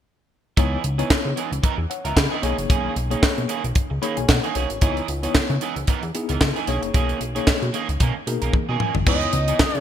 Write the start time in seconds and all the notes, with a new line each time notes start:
0.57 C#2 E3 B3 D#4 E4 G#4 C#5, kick, closed hi-hat
0.83 C#2, muted clean electric guitar stroke, closed hi-hat
0.98 E3 B3 D#4 E4 G#4 C#5, closed hi-hat
1.10 C#3, muted clean electric guitar stroke, kick, snare, clap
1.25 C#3, muted clean electric guitar stroke
1.36 E3 B3 D#4 G#4, closed hi-hat
1.52 C#2, muted clean electric guitar stroke, closed hi-hat
1.63 E3 B3 D#4 A#4, kick, closed hi-hat
1.78 E2, muted clean electric guitar stroke
1.90 C#5 F#5, muted clean electric guitar stroke, closed hi-hat
2.05 C#2 E3 B3 D#4 A#4 E5 A#5, closed hi-hat
2.16 C#3 F#5 B5, muted clean electric guitar stroke, kick, snare, clap
2.31 E3 B3 D#4 G#4 D#5 G#5
2.42 B1 D#3 A#3 C#4 D#4 G#4 C#5, closed hi-hat
2.58 F#1, muted clean electric guitar stroke, closed hi-hat
2.69 B1 D#3 A#3 C#4 G#4, kick, closed hi-hat
2.96 B1, muted clean electric guitar stroke, closed hi-hat
3.10 D#3 A#3 C#4 D#4 G#4 C#5, closed hi-hat
3.23 kick, snare, clap
3.37 B2, muted clean electric guitar stroke, closed hi-hat
3.48 D#3 A#3 C#4 G#4, closed hi-hat
3.64 B1, muted clean electric guitar stroke, closed hi-hat
3.75 kick, closed hi-hat
3.90 C#2, muted clean electric guitar stroke
4.02 D#3 A#3 C#4 D#4 G#4 C#5 B5, closed hi-hat
4.17 B1 G#5, muted clean electric guitar stroke, closed hi-hat
4.29 B2 F#5, muted clean electric guitar stroke, kick, snare, clap
4.43 D#3 A#3 C#4 G#4, closed hi-hat
4.55 B1 D#3 A#3 C#4 G#4 C#5, closed hi-hat
4.70 G#1, muted clean electric guitar stroke, closed hi-hat
4.81 C#2 E3 B3 D#4 E4 G#4 C#5, kick, closed hi-hat
4.97 closed hi-hat
5.08 C#2, muted clean electric guitar stroke, closed hi-hat
5.23 E3 B3 D#4 E4 G#4 C#5, closed hi-hat
5.35 C#3, muted clean electric guitar stroke, kick, snare, clap
5.50 C#3, muted clean electric guitar stroke, closed hi-hat
5.61 E3 B3 D#4 G#4, closed hi-hat
5.76 C#2, muted clean electric guitar stroke, closed hi-hat
5.87 E3 B3 D#4 A#4, kick, closed hi-hat
6.03 E2, muted clean electric guitar stroke, closed hi-hat
6.14 B3 D#4 E4 G#4, muted clean electric guitar stroke, closed hi-hat
6.29 C#2 E3 B3 D#4 A#4, closed hi-hat
6.41 C#3, muted clean electric guitar stroke, kick, snare, clap
6.56 E3 B3 D#4 G#4, closed hi-hat
6.67 B1 D#3 A#3 C#4 D4 G#4 C#5, closed hi-hat
6.74 D#4
6.82 F#1, muted clean electric guitar stroke, closed hi-hat
6.94 B1 D#3 A#3 C#4 G#4, kick, closed hi-hat
7.09 closed hi-hat
7.20 B1, muted clean electric guitar stroke, closed hi-hat
7.35 D#3 A#3 C#4 D#4 G#4 C#5, closed hi-hat
7.47 B2, kick, snare, clap
7.62 B2, muted clean electric guitar stroke, closed hi-hat
7.73 D#3 A#3 C#4 G#4, closed hi-hat
7.89 C#2, muted clean electric guitar stroke, closed hi-hat
8.00 B2 D#3 A#3 C#4 A#4, kick, closed hi-hat
8.15 muted clean electric guitar stroke
8.26 B2 A#3 D#4 G#4 A#4, muted clean electric guitar stroke, closed hi-hat
8.42 B1 D#3 A#3 C#4 A#4, closed hi-hat
8.53 muted clean electric guitar stroke, kick, high tom
8.69 B2 D#3 A#3 C#4 G#4
8.80 D#3 A#3 C#4 G#4, mid tom
8.95 G#1, muted clean electric guitar stroke, floor tom
9.06 C#2 E3 B3 D#4 E4 G#4 B4 D#5, kick, crash, muted conga
9.14 C#5
9.21 closed hi-hat
9.33 C#2, muted clean electric guitar stroke, closed hi-hat, muted conga
9.48 E3 B3 D#4 G#4, closed hi-hat
9.59 C#3, muted clean electric guitar stroke, kick, snare, clap, high conga
9.75 C#3, muted clean electric guitar stroke, closed hi-hat